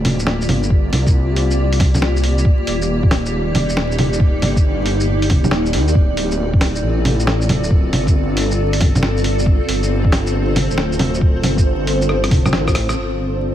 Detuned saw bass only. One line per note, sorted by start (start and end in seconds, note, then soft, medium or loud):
0.00 0.47 D1 medium
0.49 0.91 G1 medium
0.93 2.45 C2 medium
2.67 3.68 D#1 medium
3.69 4.41 D#1 medium
4.42 5.29 G1 medium
5.29 5.75 D#1 medium
5.74 5.94 D#2 loud
5.95 6.82 D1 loud
6.83 7.48 A1 medium
7.49 7.92 D1 medium
7.93 9.59 G1 medium
9.68 10.68 G1 medium
10.70 11.42 D1 medium
11.43 12.30 G1 medium
12.31 12.54 D1 medium
12.53 12.96 A1 medium
12.96 13.55 G1 medium